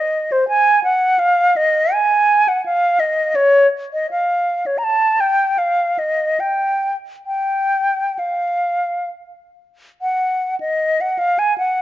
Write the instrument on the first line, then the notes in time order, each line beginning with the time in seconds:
flute
Already playing: D#5
0.32 C5
0.48 G#5
0.84 F#5
1.19 F5
1.56 D#5
1.93 G#5
2.48 F#5
2.66 F5
3.00 D#5
3.35 C#5
3.93 D#5
4.11 F5
4.66 C#5
4.78 A#5
4.84 A5
5.20 G5
5.58 F5
5.99 D#5
6.40 G5
7.26 G5
8.19 F5
10.02 F#5
10.60 D#5
11.01 F#5
11.19 F5
11.39 G#5
11.58 F#5